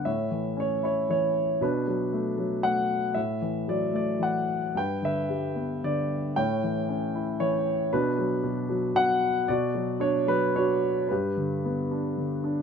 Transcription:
<<
  \new Staff \with { instrumentName = "Grand piano" } { \time 3/4 \key b \minor \tempo 4 = 114 << { e''4 cis''8 cis''8 cis''4 | b'2 fis''4 | e''4 d''8 d''8 fis''4 | g''8 e''4. d''4 |
g''2 cis''4 | b'2 fis''4 | d''4 cis''8 b'8 cis''4 | b'2. | } \\ { cis''4. r4. | d'2 r4 | r2. | b'8 b'4. r4 |
cis''2 r4 | d'2 r4 | fis'4. r8 fis'4 | g'2. | } >> }
  \new Staff \with { instrumentName = "Grand piano" } { \clef bass \time 3/4 \key b \minor a,8 e8 cis'8 e'8 e4 | b,8 fis8 a8 fis8 a4 | a,8 e8 fis8 a8 e4 | g,8 d8 g8 b8 d4 |
a,8 e8 cis'8 e'8 e4 | b,8 fis8 b,8 fis8 b,4 | b,8 fis8 d'8 fis8 d'4 | g,8 d8 b8 d'8 d8 d'8 | }
>>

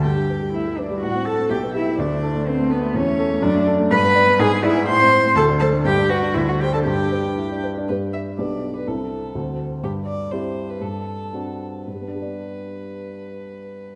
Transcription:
<<
  \new Staff \with { instrumentName = "Violin" } { \time 2/4 \key g \major \tempo 4 = 123 g''4 e''8 d''8 | fis''8 a''8 g''8 e''8 | d''4 c''8 b'8 | cis''4 d''8 r8 |
b''4 gis''8 e''8 | c'''4 a''8 a''8 | g''8 fis''8 e''16 fis''16 g''16 a''16 | g''4. r8 |
b'8 e''8 d''8. b'16 | a'4. r8 | g'8 d''8 c''8. b'16 | a'4. r8 |
b'2~ | b'2 | }
  \new Staff \with { instrumentName = "Cello" } { \time 2/4 \key g \major g'4 e'8 d'8 | fis'8 a'8 g'8 e'8 | d'4 c'8 b8 | cis'4 d'8 r8 |
b'4 gis'8 e'8 | c''4 a'8 a'8 | g'8 fis'8 e'16 fis'16 g'16 a'16 | g'4. r8 |
r2 | r2 | r2 | r2 |
r2 | r2 | }
  \new Staff \with { instrumentName = "Grand piano" } { \time 2/4 \key g \major g,16 g16 b'16 g16 a16 g16 b'16 g16 | a,16 c'16 a'16 c'16 b,,16 b16 g'16 b16 | d,16 a16 a'16 a16 b16 a16 a'16 a16 | e,16 a16 a'16 a16 fis,16 a16 a'16 a16 |
g,16 b16 d''16 b16 gis,16 b16 d''16 b16 | a,16 c'16 c''16 c'16 d,16 d'16 c''16 d'16 | g,16 d'16 b'16 d'16 d,16 d'16 c''16 d'16 | g,16 d'16 b'16 d'16 e'16 d'16 b'16 d'16 |
<g, d' g' b'>4 <b,, d' g' b'>4 | <c, c' e' a'>4 <d, c' fis' a'>4 | g,4 <c' e' g'>4 | g,4 <c' d' fis'>4 |
<g, g b d' g' d''>2~ | <g, g b d' g' d''>2 | }
>>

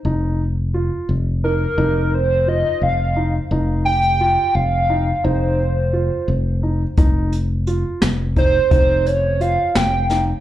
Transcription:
<<
  \new Staff \with { instrumentName = "Analog synth lead" } { \time 5/8 \key ees \mixolydian \tempo 4 = 87 r2 bes'8~ | bes'8 c''8 ees''8 f''8. r16 | r8 g''4 f''4 | c''2 r8 |
r2 c''8~ | c''8 des''8 f''8 g''8. r16 | }
  \new Staff \with { instrumentName = "Grand piano" } { \time 5/8 \key ees \mixolydian ees'4 f'4 ees'8 | ees'4 f'4 ees'8 | ees'4 f'4 ees'8 | ees'4 f'4 ees'8 |
ees'4 f'4 ees'8 | ees'4 f'4 ees'8 | }
  \new Staff \with { instrumentName = "Fingered electric bass" } { \clef bass \time 5/8 \key ees \mixolydian f,,4. f,,4 | f,,4. f,,4 | f,,4. f,,4 | f,,4. f,,4 |
f,,4. f,,4 | f,,4. f,,4 | }
  \new DrumStaff \with { instrumentName = "Drums" } \drummode { \time 5/8 r4. r4 | r4. r4 | r4. r4 | r4. r4 |
<hh bd>8 hh8 hh8 <hh sn>8 <hh bd>8 | <hh bd>8 hh8 hh8 <hh sn>8 <hh sn>8 | }
>>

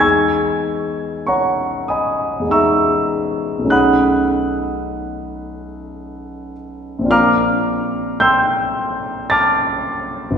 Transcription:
\new Staff \with { instrumentName = "Grand piano" } { \time 3/4 \key b \major \tempo 4 = 53 << { <gis'' cis''' e''' gis'''>4 <cis'' fis'' ais'' cis'''>8 <dis'' gis'' b'' dis'''>8 <e'' ais'' cis''' e'''>4 | <fis'' b'' dis''' fis'''>2~ <fis'' b'' dis''' fis'''>8 r8 | <eis'' ais'' d''' eis'''>4 <g'' bis'' e''' g'''>4 <a'' d''' eis''' a'''>4 | } \\ { <e, gis b dis' gis'>2 <e, gis b dis' gis'>4 | <b,, a cis' dis' gis'>2. | <ais,, bis d' eis' ais'>2. | } >> }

